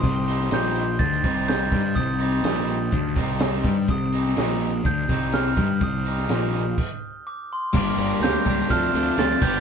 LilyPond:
<<
  \new Staff \with { instrumentName = "Glockenspiel" } { \time 4/4 \key c \dorian \tempo 4 = 125 ees'''4 g'''4 a'''4 g'''4 | ees'''4 ees'''2 r4 | ees'''2 g'''4 f'''4 | ees'''2. d'''8 c'''8 |
d'''4 g'''4 f'''4 a'''8 g'''8 | }
  \new Staff \with { instrumentName = "String machine" } { \time 4/4 \key c \dorian << { <ees' g' g''>1~ | <ees' g' g''>1~ | <ees' g' g''>1~ | <ees' g' g''>2 r2 |
<g' bes' bes''>2 <f' c'' a''>4. <g' b' b''>8 | } \\ { c''1~ | c''1~ | c''1~ | c''2 r2 |
d''2 d''2 | } >> }
  \new Staff \with { instrumentName = "Overdriven electric guitar" } { \time 4/4 \key c \dorian r8 <g c' ees'>8 <g c' ees'>8 r4 <g c' ees'>8 <g c' ees'>8 r8 | r8 <g c' ees'>8 <g c' ees'>8 r4 <g c' ees'>8 <g c' ees'>8 r8 | r8 <g c' ees'>8 <g c' ees'>8 r4 <g c' ees'>8 <g c' ees'>8 r8 | r8 <g c' ees'>8 <g c' ees'>8 r2 r8 |
<bes d' g'>8 <bes d' g'>8 <bes d' g'>8 <bes d' g'>8 <f a d' a'>8 <f a d' a'>8 <f a d' a'>8 <b d' g'>8 | }
  \new Staff \with { instrumentName = "Clean electric guitar" } { \clef bass \time 4/4 \key c \dorian c4 bes,4 d8 c4 g8 | c4 bes,4 d8 c4 g8 | c4 bes,4 d8 c4 g8 | c4 bes,4 r2 |
<g bes d'>8 <g bes d'>8 <g bes d'>8 <g bes d'>8 <f c' d' a'>8 <f c' d' a'>8 <f c' d' a'>8 <b d' g'>8 | }
  \new Staff \with { instrumentName = "Picked electric bass" } { \clef bass \time 4/4 \key c \dorian c,4 bes,,4 d,8 c,4 g,8 | c,4 bes,,4 d,8 c,4 g,8 | c,4 bes,,4 d,8 c,4 g,8 | c,4 bes,,4 r2 |
g,,8 g,,8 d,8 des,8 d,8 d,8 d,8 g,,8 | }
  \new DrumStaff \with { instrumentName = "Drums" } \drummode { \time 4/4 <hh bd>8 hh16 sn16 <hh sn tamb>8 hh8 <hh bd>8 <hh bd>8 <hh sn tamb>8 <hh bd>8 | <hh bd>8 hh8 <hh sn tamb>8 hh8 <hh bd>8 <hh bd>8 <hh sn tamb>8 <hh bd>8 | <hh bd>8 hh16 sn16 <hh sn tamb>8 hh8 <hh bd>8 <hh bd>8 <hh sn tamb>8 <hh bd>8 | <hh bd>8 hh16 sn16 <hh sn tamb>8 <hh sn>8 <cymc bd>4 r4 |
<cymc bd>8 hh8 <hh sn tamb>8 <hh bd>8 <hh bd>8 hh8 <hh sn tamb>8 <cymc bd>8 | }
>>